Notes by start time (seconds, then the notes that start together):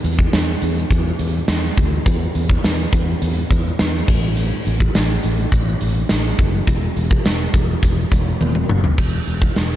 0.04 E2, closed hi-hat
0.19 kick
0.33 E2, snare, closed hi-hat, tambourine
0.62 E2, closed hi-hat
0.91 E2, kick, closed hi-hat
1.19 E2, closed hi-hat
1.48 E2, snare, closed hi-hat, tambourine
1.77 D2, kick, closed hi-hat
2.06 E2, kick, closed hi-hat
2.35 E2, closed hi-hat
2.50 kick
2.64 E2, snare, closed hi-hat, tambourine
2.93 E2, kick, closed hi-hat
3.22 E2, closed hi-hat
3.50 E2, kick, closed hi-hat
3.79 E2, snare, closed hi-hat, tambourine
4.08 A1, kick, crash
4.37 closed hi-hat
4.66 A1, closed hi-hat
4.80 kick
4.95 A1, snare, closed hi-hat, tambourine
5.23 A1, closed hi-hat
5.52 A1, kick, closed hi-hat
5.81 A1, closed hi-hat
6.09 A1, snare, closed hi-hat, tambourine
6.38 F#1, kick, closed hi-hat
6.67 E1, kick, closed hi-hat
6.96 E1, closed hi-hat
7.11 kick
7.25 E1, snare, closed hi-hat, tambourine
7.54 E1, kick, closed hi-hat
7.83 E1, kick, closed hi-hat
8.12 E1, kick, closed hi-hat
8.41 E1, high tom
8.55 mid tom
8.69 F#1, mid tom
8.84 floor tom
8.98 E1, kick, crash
9.27 E1, closed hi-hat
9.42 kick
9.56 E1, snare, closed hi-hat